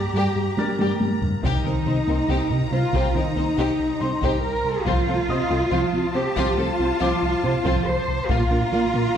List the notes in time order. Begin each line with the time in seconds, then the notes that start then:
Already playing: G4 A#5
0.14 G2 G3 G4
0.36 G2
0.57 G3 D4 A#4 D5 A6, taiko high
0.79 G2 G3 G4, taiko high
1.00 G2, taiko high
1.22 G2, taiko low
1.43 C2 C3 C4 D#4 G4 A#5, taiko
1.65 C2 D#3 C4 A#4
1.86 C3 G3 C4 C5
2.07 C2 A#3 C4 A#4
2.29 C2 C3 C4 G4
2.50 C3
2.71 C3 G3 C4 F4 C5
2.93 C2 C3 C4 G4, taiko
3.15 C2 D#3 C4 D#4 A#4
3.36 C2 A#3 C4 C5
3.57 C2 C3 C4 G4
3.79 C2
4.00 C3 G3 C4 C5 C6
4.21 C2 C3 C4 G4, taiko
4.43 C2 A#4
4.64 C2
4.85 C2 F3 C4 F4, taiko
5.06 C2 A3 C4 A4
5.28 C3 C4 C5 D#5 D#6
5.49 C2 C4 F4 A4
5.70 C2 F3 C4 F4 A5
5.93 C3
6.14 C3 C4 G4 C5
6.36 C2 F3 C4 F4, taiko
6.57 C2 A3 C4 F4 A4
6.79 C2 C4 F4 C5
6.99 C2 F3 C4 F4 D6
7.23 C2
7.43 C3 C4 C5
7.65 C2 F3 C4 F4, taiko
7.86 C2 C5
8.08 C2
8.28 A#2 A#3 F4 F5 A#5, taiko
8.51 A#2 A#3 D4 A#4
8.72 A#3 F4 D5
8.94 A#2 A#3 A#4